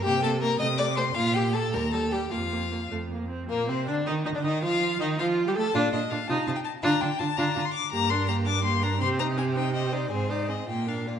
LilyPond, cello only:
\new Staff \with { instrumentName = "Cello" } { \clef bass \time 6/8 \key bes \major \tempo 4. = 108 c4. c4. | bes,4. ees,4. | f,4. f,4. | bes,8 c8 d8 ees8 ees16 d16 ees8 |
f4 ees8 f8. g16 a8 | bes,8 bes,8 bes,8 c8 c8 r8 | d8 d8 d8 d8 d8 r8 | \key c \minor g,2. |
c2. | aes,4. bes,4. | }